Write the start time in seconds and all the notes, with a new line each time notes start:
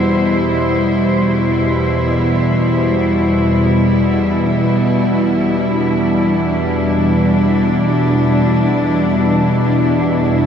Already playing: E2 B2 G3 E4 G4 C5
3.58 E2 B2
5.58 D4